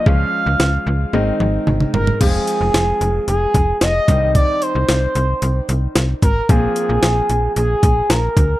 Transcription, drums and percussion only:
0.06 kick
0.60 snare
1.13 high tom
1.40 mid tom
1.67 mid tom
1.80 mid tom
1.94 floor tom
2.07 floor tom
2.21 kick, closed hi-hat, crash
2.47 closed hi-hat
2.74 snare, closed hi-hat
3.01 closed hi-hat
3.28 closed hi-hat
3.54 kick, closed hi-hat
3.81 snare, closed hi-hat
4.08 kick, closed hi-hat
4.35 kick, closed hi-hat
4.62 closed hi-hat
4.89 snare, closed hi-hat
5.15 closed hi-hat
5.42 closed hi-hat
5.69 closed hi-hat
5.96 snare, closed hi-hat
6.22 kick, closed hi-hat
6.49 kick, closed hi-hat
6.76 closed hi-hat
7.03 snare, closed hi-hat
7.30 closed hi-hat
7.56 closed hi-hat
7.83 kick, closed hi-hat
8.10 snare, closed hi-hat
8.37 kick, closed hi-hat

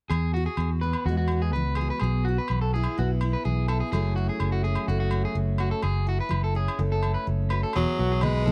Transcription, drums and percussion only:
0.11 low agogo
0.57 low agogo
0.93 low agogo
1.28 low agogo
1.75 low agogo
2.00 low agogo
2.48 low agogo
2.84 low agogo
3.21 low agogo
3.68 low agogo
3.93 low agogo
4.40 low agogo
4.75 low agogo
5.11 low agogo
5.58 low agogo
5.83 low agogo
6.31 low agogo
6.68 low agogo
7.03 low agogo
7.50 low agogo
7.73 low agogo
8.21 low conga, low agogo
8.48 high conga, low conga

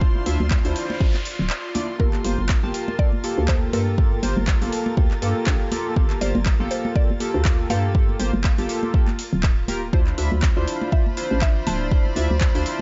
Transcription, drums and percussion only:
0.01 kick
0.15 muted conga
0.26 open hi-hat, muted conga
0.40 high conga, low conga
0.51 kick, clap
0.65 open hi-hat
0.76 open hi-hat
0.90 muted conga
1.01 kick
1.14 clap, muted conga, high conga
1.25 open hi-hat
1.50 clap
1.75 open hi-hat, high conga
2.00 kick
2.13 clap
2.24 open hi-hat
2.38 high conga, low conga
2.49 kick, clap
2.74 open hi-hat
2.88 muted conga
2.99 kick
3.12 muted conga, high conga
3.24 open hi-hat
3.48 kick, clap
3.73 open hi-hat, high conga
3.98 kick
4.13 muted conga
4.23 open hi-hat, muted conga
4.36 high conga, low conga
4.47 kick, clap
4.62 open hi-hat
4.72 open hi-hat
4.86 muted conga
4.97 kick
5.11 clap, high conga
5.22 open hi-hat
5.47 kick, clap
5.72 open hi-hat, high conga
5.96 kick
6.10 clap
6.21 open hi-hat
6.35 high conga, low conga
6.46 kick, clap
6.71 open hi-hat
6.85 muted conga
6.96 kick
7.09 muted conga, high conga
7.20 open hi-hat
7.45 kick, clap
7.70 open hi-hat, high conga
7.95 kick
8.09 muted conga
8.20 open hi-hat, muted conga
8.33 high conga, low conga
8.44 kick, clap
8.58 open hi-hat
8.69 open hi-hat
8.83 muted conga
8.94 kick
9.07 clap, high conga
9.19 open hi-hat
9.43 kick, clap
9.68 open hi-hat, high conga
9.93 kick
10.07 clap
10.18 open hi-hat
10.31 high conga, low conga
10.42 kick, clap
10.67 open hi-hat
10.82 muted conga
10.92 kick
11.06 muted conga, high conga
11.17 open hi-hat
11.41 kick, clap
11.67 open hi-hat, high conga
11.91 kick
12.06 muted conga
12.16 open hi-hat, muted conga
12.30 high conga, low conga
12.41 kick, clap
12.55 open hi-hat
12.66 open hi-hat

